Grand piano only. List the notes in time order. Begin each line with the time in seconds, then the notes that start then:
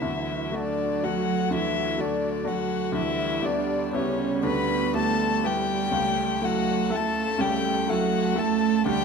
0.01 D2 D3
0.52 A3 F#4
1.03 A3 F#4
1.50 D2 D3
1.98 A3 F#4
2.45 A3 F#4
2.92 D2 D3
3.40 B3 E4 G4
3.93 B3 E4 G4
4.43 D2 D3
4.93 B3 E4 G4
5.44 B3 E4 G4
5.91 C#2 C#3
6.42 A3 E4 A4
6.90 A3 E4 A4
7.38 C#2 C#3
7.88 A3 E4 A4
8.36 A3 E4 A4
8.85 D2 D3